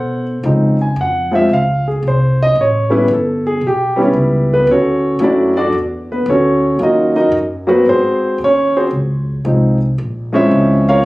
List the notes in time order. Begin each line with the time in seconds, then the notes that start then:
Already playing: B2 A4 C5 F#5
0.43 C#3 F3 G#3 C4 D#4
0.82 G#5
0.96 F2
1.01 F#5
1.31 F3 G#3 C4 F4 E5
1.49 C#2
1.53 F5
1.88 G#4
2.03 C2
2.08 C5
2.43 D#5
2.55 A1
2.61 C#5
2.90 G3 B3 C#4 E4
2.94 B4
3.08 G1
3.13 A4
3.47 G#4
3.61 B1
3.67 G4
3.96 G3 B3 C#4 E4
4.02 C#4
4.13 C#2
4.54 B3 B4
4.67 D2
4.71 C#4 F#4 A4 C#5
5.19 F#2 F#3 A3 C#4 E4
5.24 D4 F#4 A4 D5
5.57 D4 F#4 A4 D5
5.72 E2
6.12 B3 B4
6.26 D2 C#5
6.30 C#4 F#4 A4
6.78 D#2 F#3 A#3 C#4 F4
6.82 D#4 F#4 A#4 D#5
7.16 D#4 F#4 A#4 D#5
7.32 F#2
7.67 F#3 A#3 B3 C4 F#4 B4
7.85 G#2 C4 F#4 G#4 C5
8.38 D#2
8.44 C#4 C#5
8.77 C4 F#4 G#4 C5
8.91 C#2
9.44 C2 F3 G#3 C4 D#4
9.98 A#1
10.33 F3 G#3 C4 C#4 E4 E5
10.51 C#2
10.89 F4 A#4 C#5 F5